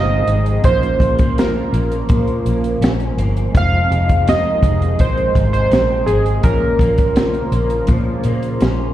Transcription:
Already playing: fingered electric bass G1, clean electric guitar F2 D#3 G#3 C4, analog synth pad C3 F3 G#3 D#4, tine electric piano G#3 D#4 F4 C5, synth keys D#5
0.27 fingered electric bass G#1, clean electric guitar G#3, closed hi-hat
0.46 closed hi-hat
0.62 fingered electric bass A#1, clean electric guitar A#2, analog synth pad C#3 F3 A#3 F4, tine electric piano A#3 C#4 F4, synth keys C5, kick, closed hi-hat
0.67 tine electric piano A#4
0.83 closed hi-hat
1.00 fingered electric bass A#1, clean electric guitar G#3, kick, closed hi-hat
1.19 clean electric guitar A#3, kick, closed hi-hat
1.38 clean electric guitar F3, synth keys A#4, snare, closed hi-hat
1.73 fingered electric bass A#1, clean electric guitar A#3, closed hi-hat
1.92 closed hi-hat
2.09 fingered electric bass A#2, clean electric guitar F3, kick, closed hi-hat
2.27 closed hi-hat
2.45 fingered electric bass A#1, clean electric guitar A#3, closed hi-hat
2.64 closed hi-hat
2.81 fingered electric bass A#1, clean electric guitar C#4, snare, closed hi-hat
3.00 closed hi-hat
3.17 fingered electric bass G1, clean electric guitar A#3, closed hi-hat
3.37 closed hi-hat
3.52 fingered electric bass F1, clean electric guitar F2, analog synth pad C3 G#3 D#4, tine electric piano G#3 D#4, kick, closed hi-hat
3.56 tine electric piano F4 C5, synth keys F5
3.90 fingered electric bass F1, clean electric guitar G#3, closed hi-hat
4.09 kick, closed hi-hat
4.28 clean electric guitar D#3, synth keys D#5, snare, closed hi-hat
4.63 fingered electric bass F1, clean electric guitar G#3, kick, closed hi-hat
4.82 closed hi-hat
4.99 fingered electric bass A#1, clean electric guitar D#3, synth keys C5, kick, closed hi-hat
5.18 closed hi-hat
5.35 fingered electric bass G#1, clean electric guitar G#3, kick, closed hi-hat
5.53 synth keys C5, closed hi-hat
5.71 fingered electric bass A#1, clean electric guitar C4, snare, closed hi-hat
6.06 fingered electric bass G#1, clean electric guitar G#3, synth keys G#4, closed hi-hat
6.26 closed hi-hat
6.41 fingered electric bass A#1, clean electric guitar A#2, analog synth pad C#3 A#3 F4, tine electric piano A#3 C#4 F4, synth keys A#4, kick, closed hi-hat
6.46 tine electric piano C#5
6.79 fingered electric bass A#1, clean electric guitar A#3, kick, closed hi-hat
6.98 kick, closed hi-hat
7.16 clean electric guitar F3, snare, closed hi-hat
7.34 closed hi-hat
7.52 fingered electric bass A#1, clean electric guitar A#3, closed hi-hat
7.70 closed hi-hat
7.87 fingered electric bass A#2, clean electric guitar F3, kick, closed hi-hat
8.24 fingered electric bass A#2, clean electric guitar A#3, closed hi-hat
8.43 closed hi-hat
8.60 fingered electric bass A#1, clean electric guitar C#4, snare, closed hi-hat

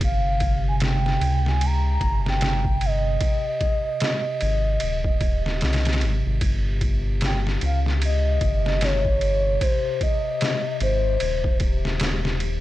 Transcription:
Already playing: ambient pad C3
0.01 analog synth bass G1, soft synth lead F5, kick, ride
0.40 kick, ride
0.68 soft synth lead G#5
0.80 soft synth lead G5, snare, ride
1.06 snare
1.21 analog synth bass C#2, ride
1.46 soft synth lead G#5, snare
1.61 ride
1.66 soft synth lead A#5
2.01 analog synth bass G1, kick, ride
2.26 soft synth lead G5, snare
2.41 snare, ride
2.65 kick
2.81 ride
2.85 soft synth lead D#5
3.21 kick, ride
3.61 kick, ride
4.00 snare, ride
4.41 analog synth bass G#1, ride
4.80 analog synth bass D#1, ride
5.04 kick
5.21 kick, ride
5.46 snare
5.61 analog synth bass C2, snare, ride
5.73 snare, ride
5.85 snare, ride
5.93 snare, ride
6.01 analog synth bass G#1, ride
6.26 analog synth bass G#1
6.41 analog synth bass G1, ambient pad C3, kick, ride
6.81 kick, ride
7.21 snare, ride
7.25 soft synth lead G5
7.47 snare
7.61 analog synth bass C#2, ride
7.66 soft synth lead F5
7.86 snare
8.02 soft synth lead D#5, ride
8.41 analog synth bass G1, kick, ride
8.66 snare
8.81 soft synth lead C#5, snare, ride
9.05 kick
9.21 ride
9.61 soft synth lead C5, kick, ride
10.01 soft synth lead D#5, kick, ride
10.41 snare, ride
10.80 analog synth bass G#1, soft synth lead C5, ride
11.20 analog synth bass D#1, ride
11.44 kick
11.60 kick, ride
11.85 snare
12.00 snare, ride
12.25 snare
12.40 ride

